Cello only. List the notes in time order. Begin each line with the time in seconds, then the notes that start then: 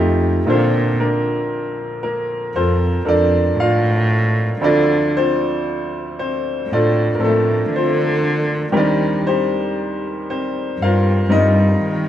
Already playing: F2
0.49 A#2
2.56 F2
3.07 F2
3.58 A2
4.62 D3
6.68 A2
7.19 A2
7.71 D3
8.74 D#3
10.79 G2
11.31 G2
11.82 D#3